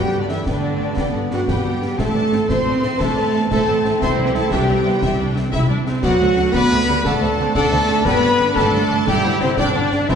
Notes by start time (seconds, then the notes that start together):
Already playing: D3 G3 B3 G4 B4 G5
0.12 G1 A4 F#5
0.21 D3 D4 D5
0.28 G1 E3 E4 B4 E5 G5, snare
0.45 G1 D3 A3 D4 B4 D5 G5, concert bass drum, snare
0.63 G1 A4 F#5
0.80 G1 B4 G5
0.97 G1 G3 B4 G5, concert bass drum, snare
1.14 G1 B3 A4 F#5
1.30 G1 F#3 D4 F#4 B4 F#5 G5, snare
1.48 G1 G3 B3 G4 B4 G5, concert bass drum, snare
1.64 G1 A4 F#5
1.81 G1 B4 G5, snare
1.98 A1 E3 A3 C4 A4 C5 E5 A5, concert bass drum, snare
2.13 A1 D4 B4 D5
2.32 A1 C4 C5 E5, snare
2.48 A1 A3 C4 C5 E5 C6, concert bass drum, snare
2.65 A1 B3 B4 D5
2.82 A1 C4 C5 E5, snare
2.99 A1 A3 D4 A4 C5 E5 A5, concert bass drum, snare
3.17 A1 C4 B4 D5
3.34 A1 B3 C5 E5
3.51 A1 A3 C4 A4 C5 E5 A5, concert bass drum, snare
3.68 A1 B4 D5
3.84 A1 C5 E5, snare
4.01 C2 C4 E4 C5 E5 C6, concert bass drum, snare
4.18 C2 D5
4.26 G3 G4 G5
4.35 C2 A3 A4 E5 A5, snare
4.51 C2 G3 D4 G4 E5 G5, concert bass drum, snare
4.69 C2 C4 D5
4.85 C2 B3 E5
5.02 C2 C4 E5, concert bass drum, snare
5.19 C2 D4 D5
5.36 C2 C4 E5, snare
5.51 C2 E4 E5, concert bass drum, snare
5.69 C2 D4 D5
5.86 C2 C4 E5, snare
6.02 D2 D3 F#3 B3 D4 F#4 D5 F#5, concert bass drum, snare, crash
6.19 D2 A3 C5 E5
6.36 D2 A3 D5 F#5, snare
6.53 D2 B3 B4 D5 F#5 B5, concert bass drum, snare
6.70 D2 A3 C5 E5
6.88 D2 G3 D5 F#5, snare
7.04 D2 A3 A4 D5 F#5 A5, concert bass drum, snare
7.22 D2 B3 C5 E5
7.38 D2 C4 D5 F#5
7.54 D2 A3 D4 A4 D5 F#5 A5, concert bass drum, snare
7.71 D2 B3 C5 E5
7.88 D2 A3 D5 F#5, snare
8.04 G1 G3 B3 B4 D5 G5 B5, concert bass drum, snare
8.21 G1 B3 C5 F#5
8.39 G1 D4 D5 G5, snare
8.55 G1 A3 A4 D5 G5 A5, concert bass drum, snare
8.73 G1 C5 F#5
8.90 G1 D5 G5
9.07 G1 G3 E4 G4 D5 G5, concert bass drum, snare
9.24 G1 C5 F#5
9.40 G1 C3 C4 C5 D5 G5, snare
9.57 G1 D3 D4 D5 G5, concert bass drum, snare
9.74 G1 C5 F#5
9.91 G1 D5 G5, snare
10.09 A1 E3 C4 E4 C5 E5, concert bass drum, snare